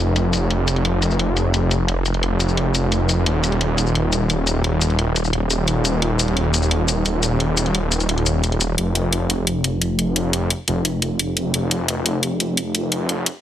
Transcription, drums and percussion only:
0.16 closed hi-hat, shaker
0.33 closed hi-hat, shaker
0.50 closed hi-hat
0.68 closed hi-hat, shaker
0.76 closed hi-hat
0.85 closed hi-hat
1.02 closed hi-hat, shaker
1.11 shaker
1.19 closed hi-hat
1.37 closed hi-hat, shaker
1.54 closed hi-hat, shaker
1.71 closed hi-hat, shaker
1.88 closed hi-hat
2.06 closed hi-hat, shaker
2.14 closed hi-hat
2.23 closed hi-hat
2.40 closed hi-hat, shaker
2.49 shaker
2.57 closed hi-hat
2.75 closed hi-hat, shaker
2.92 closed hi-hat, shaker
3.09 closed hi-hat, shaker
3.26 closed hi-hat
3.44 closed hi-hat, shaker
3.52 closed hi-hat
3.61 closed hi-hat
3.78 closed hi-hat, shaker
3.87 shaker
3.95 closed hi-hat
4.13 closed hi-hat, shaker
4.30 closed hi-hat, shaker
4.47 closed hi-hat, shaker
4.64 closed hi-hat
4.81 closed hi-hat, shaker
4.90 closed hi-hat
4.99 closed hi-hat
5.16 closed hi-hat, shaker
5.25 shaker
5.33 closed hi-hat
5.50 closed hi-hat, shaker
5.68 closed hi-hat, shaker
5.85 closed hi-hat, shaker
6.02 closed hi-hat
6.19 closed hi-hat, shaker
6.28 closed hi-hat
6.37 closed hi-hat
6.54 closed hi-hat, shaker
6.63 shaker
6.71 closed hi-hat
6.88 closed hi-hat, shaker
7.06 closed hi-hat, shaker
7.23 closed hi-hat, shaker
7.40 closed hi-hat
7.57 closed hi-hat, shaker
7.66 closed hi-hat
7.75 closed hi-hat
7.92 closed hi-hat, shaker
8.00 closed hi-hat, shaker
8.09 closed hi-hat
8.18 closed hi-hat
8.26 closed hi-hat, shaker
8.44 closed hi-hat, shaker
8.52 closed hi-hat
8.61 closed hi-hat, shaker
8.78 closed hi-hat
8.95 closed hi-hat
9.13 closed hi-hat
9.30 closed hi-hat
9.47 closed hi-hat
9.64 closed hi-hat
9.82 closed hi-hat
9.99 closed hi-hat
10.16 closed hi-hat
10.33 closed hi-hat
10.50 closed hi-hat
10.68 closed hi-hat
10.85 closed hi-hat
11.02 closed hi-hat
11.19 closed hi-hat
11.37 closed hi-hat
11.54 closed hi-hat
11.71 closed hi-hat
11.88 closed hi-hat
12.06 closed hi-hat
12.23 closed hi-hat
12.40 closed hi-hat
12.57 closed hi-hat
12.75 closed hi-hat
12.92 closed hi-hat
13.09 closed hi-hat
13.26 closed hi-hat

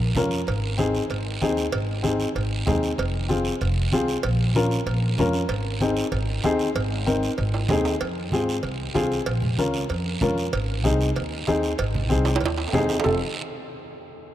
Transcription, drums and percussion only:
0.15 high conga, low conga, low timbale, short guiro
0.31 short guiro
0.47 cowbell, high conga, long guiro
0.78 high conga, short guiro
0.95 short guiro
1.10 cowbell, high conga, long guiro
1.42 high conga, short guiro
1.57 short guiro
1.72 cowbell, high conga, long guiro
2.04 high conga, short guiro
2.20 short guiro
2.36 cowbell, high conga, long guiro
2.67 high conga, low conga, low timbale, short guiro
2.83 short guiro
2.98 cowbell, high conga, long guiro
3.29 high conga, short guiro
3.45 short guiro
3.61 cowbell, high conga, long guiro
3.92 high conga, short guiro
4.08 short guiro
4.23 cowbell, high conga, long guiro
4.55 high conga, short guiro
4.71 short guiro
4.87 cowbell, high conga, long guiro
5.18 high conga, low conga, short guiro
5.33 short guiro
5.49 cowbell, high conga, long guiro
5.81 high conga, short guiro
5.97 short guiro
6.12 cowbell, high conga, long guiro
6.43 high conga, low timbale, short guiro
6.59 short guiro
6.75 cowbell, high conga, long guiro
7.07 high conga, short guiro
7.23 short guiro
7.38 cowbell, high conga, long guiro
7.54 high timbale
7.69 high conga, low conga, low timbale, short guiro
7.85 low timbale, short guiro
8.01 cowbell, high conga, long guiro
8.32 high conga, short guiro
8.49 short guiro
8.63 cowbell, high conga, long guiro
8.95 high conga, low timbale, short guiro
9.12 short guiro
9.26 cowbell, high conga, long guiro
9.42 low conga
9.58 high conga, short guiro
9.74 short guiro
9.89 cowbell, high conga, long guiro
10.21 high conga, low conga, short guiro
10.38 short guiro
10.53 cowbell, high conga, long guiro
10.85 high conga, short guiro
11.01 short guiro
11.16 cowbell, high conga, long guiro
11.47 high conga, low timbale, short guiro
11.63 short guiro
11.78 cowbell, high conga, long guiro
11.95 low conga
12.10 high conga, short guiro
12.25 high timbale, short guiro
12.36 high timbale
12.41 cowbell, high conga, long guiro
12.46 high timbale
12.58 high timbale
12.68 low timbale
12.73 high conga, low conga, short guiro
12.78 low timbale
12.89 low timbale, short guiro
13.00 low timbale
13.04 low conga, low timbale, long guiro

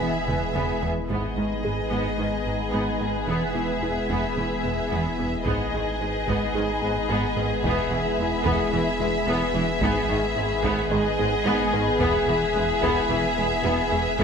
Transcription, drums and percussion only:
0.28 taiko mid
0.56 taiko mid
0.83 taiko low
1.10 taiko
5.46 taiko
6.28 taiko
7.64 taiko
8.45 taiko
9.81 taiko
10.64 taiko
12.00 taiko
12.83 taiko
14.19 taiko

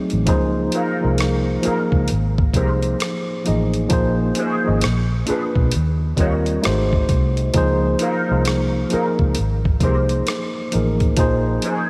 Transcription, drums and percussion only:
0.10 closed hi-hat
0.27 kick, closed hi-hat
0.72 closed hi-hat
1.18 cross-stick, closed hi-hat
1.63 closed hi-hat
1.92 kick
2.08 closed hi-hat
2.38 kick
2.54 kick, closed hi-hat
2.82 closed hi-hat
3.00 cross-stick, closed hi-hat
3.46 closed hi-hat
3.74 closed hi-hat
3.90 kick, closed hi-hat
4.35 closed hi-hat
4.81 cross-stick, closed hi-hat
5.27 closed hi-hat
5.55 kick
5.71 closed hi-hat
6.17 kick, closed hi-hat
6.46 closed hi-hat
6.64 cross-stick, closed hi-hat
6.93 kick
7.09 kick, closed hi-hat
7.37 closed hi-hat
7.54 kick, closed hi-hat
7.99 closed hi-hat
8.45 cross-stick, closed hi-hat
8.90 closed hi-hat
9.19 kick
9.35 closed hi-hat
9.65 kick
9.80 kick, closed hi-hat
10.09 closed hi-hat
10.27 cross-stick, closed hi-hat
10.72 closed hi-hat
11.00 kick, closed hi-hat
11.17 kick, closed hi-hat
11.62 closed hi-hat

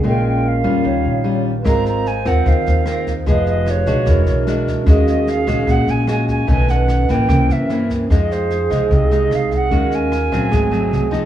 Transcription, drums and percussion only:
1.65 kick, cross-stick, snare
1.86 snare
2.06 snare
2.26 kick, cross-stick, snare
2.46 kick, snare
2.66 snare
2.86 cross-stick, snare
3.06 kick, snare
3.26 kick, snare
3.47 snare
3.66 cross-stick, snare
3.86 kick, snare
4.06 kick, cross-stick, snare
4.26 snare
4.47 snare
4.67 kick, snare
4.87 kick, cross-stick, snare
5.07 snare
5.27 snare
5.47 kick, cross-stick, snare
5.67 kick, snare
5.88 snare
6.07 cross-stick, snare
6.28 kick, snare
6.48 kick, snare
6.68 snare
6.88 cross-stick, snare
7.08 kick, snare
7.29 kick, cross-stick, snare
7.50 snare
7.70 snare
7.90 kick, snare
8.10 kick, cross-stick, snare
8.31 snare
8.50 snare
8.71 kick, cross-stick, snare
8.91 kick, snare
9.11 snare
9.31 cross-stick, snare
9.51 kick, snare
9.71 kick, snare
9.91 snare
10.12 cross-stick, snare
10.32 kick, snare
10.52 kick, cross-stick, snare
10.72 snare
10.93 snare
11.12 kick, snare

